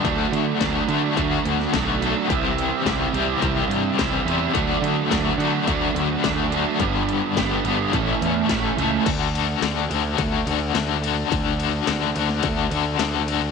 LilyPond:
<<
  \new Staff \with { instrumentName = "Overdriven electric guitar" } { \time 4/4 \key d \major \tempo 4 = 106 <d a d' fis'>4 <d a d' fis'>8 <d a d' fis'>8 <d a d' fis'>4 <d a d' fis'>8 <d a d' fis'>8 | <c e g c' g'>4 <c e g c' g'>8 <c e g c' g'>8 <c e g c' g'>4 <c e g c' g'>8 <c e g c' g'>8 | <d a d' fis'>4 <d a d' fis'>8 <d a d' fis'>8 <d a d' fis'>4 <d a d' fis'>8 <d a d' fis'>8 | <g, d g b d' g'>4 <g, d g b d' g'>8 <g, d g b d' g'>8 <a, e a cis' a'>4 <a, e a cis' a'>8 <a, e a cis' a'>8 |
<d d' fis' a'>8 <d d' fis' a'>8 <d d' fis' a'>8 <d d' fis' a'>8 <d d' fis' a'>8 <d d' fis' a'>8 <d d' fis' a'>8 <d d' fis' a'>8 | <d d' fis' a'>8 <d d' fis' a'>8 <d d' fis' a'>8 <d d' fis' a'>8 <d d' fis' a'>8 <d d' fis' a'>8 <d d' fis' a'>8 <d d' fis' a'>8 | }
  \new Staff \with { instrumentName = "Overdriven electric guitar" } { \clef bass \time 4/4 \key d \major <d fis a d'>4 <d fis a d'>8 <d fis a d'>8 <d fis a d'>4 <d fis a d'>8 <d fis a d'>8 | <c g c' e'>4 <c g c' e'>8 <c g c' e'>8 <c g c' e'>4 <c g c' e'>8 <c g c' e'>8 | <d fis a d'>4 <d fis a d'>8 <d fis a d'>8 <d fis a d'>4 <d fis a d'>8 <d fis a d'>8 | <g, d g b d'>4 <g, d g b d'>8 <g, d g b d'>8 <a, e a cis' e'>4 <a, e a cis' e'>8 <a, e a cis' e'>8 |
r1 | r1 | }
  \new Staff \with { instrumentName = "Picked electric bass" } { \clef bass \time 4/4 \key d \major d,8 d8 d,8 d8 d,8 d,8 b,,4 | c,4 c,8 c,8 c,8 g,8 c,8 e,8 | d,8 d8 d,8 d8 d,8 d,8 d,4 | g,,4 g,,8 g,,8 a,,8 e,8 a,,8 cis,8 |
d,4 d,8 d,8 d,8 d,8 d,4 | d,4 d,8 d,8 d,8 d,8 d,4 | }
  \new DrumStaff \with { instrumentName = "Drums" } \drummode { \time 4/4 <hh bd>8 hh8 <hh bd sn>8 hh8 <hh bd>8 hh16 sn16 <hh bd sn>8 hh8 | <hh bd>8 hh8 <hh bd sn>8 hh8 <hh bd>8 hh8 <hh bd sn>8 hh8 | <hh bd>8 hh8 <hh bd sn>8 hh8 <hh bd>8 hh8 <hh bd sn>8 hh8 | <hh bd>8 hh8 <hh bd sn>8 hh8 <hh bd>8 hh8 <hh bd sn>8 hh8 |
<cymc bd cymr>8 cymr8 <cymr sn>8 cymr8 <bd cymr>8 cymr8 <cymr sn>8 cymr8 | <bd cymr>8 cymr8 <cymr sn>8 cymr16 sn16 <bd cymr>8 cymr8 <cymr sn>8 cymr8 | }
>>